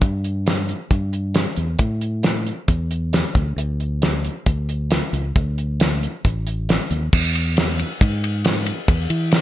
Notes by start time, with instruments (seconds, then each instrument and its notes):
0.01 fingered electric bass G2, kick, closed hi-hat
0.24 closed hi-hat
0.46 snare, closed hi-hat
0.69 closed hi-hat
0.91 fingered electric bass G2, kick, closed hi-hat
1.13 closed hi-hat
1.34 snare, closed hi-hat
1.56 fingered electric bass E2, closed hi-hat
1.79 fingered electric bass A2, kick, closed hi-hat
2.01 closed hi-hat
2.23 snare, closed hi-hat
2.46 closed hi-hat
2.68 fingered electric bass E2, kick, closed hi-hat
2.91 closed hi-hat
3.13 snare, closed hi-hat
3.35 fingered electric bass D2, kick, closed hi-hat
3.56 fingered electric bass D2, closed hi-hat
3.80 closed hi-hat
4.02 snare, closed hi-hat
4.25 closed hi-hat
4.46 fingered electric bass D2, kick, closed hi-hat
4.69 closed hi-hat
4.91 snare, closed hi-hat
5.13 fingered electric bass C#2, closed hi-hat
5.36 fingered electric bass D2, kick, closed hi-hat
5.58 closed hi-hat
5.80 snare, closed hi-hat
6.03 closed hi-hat
6.25 fingered electric bass A1, kick, closed hi-hat
6.47 closed hi-hat
6.69 snare, closed hi-hat
6.91 fingered electric bass D#2, closed hi-hat
7.13 fingered electric bass E2, kick, crash
7.35 ride
7.57 snare, ride
7.79 ride
8.01 fingered electric bass G#2, kick, ride
8.24 ride
8.45 snare, ride
8.66 ride
8.88 fingered electric bass E2, kick, ride
9.10 fingered electric bass E3, ride
9.32 snare, ride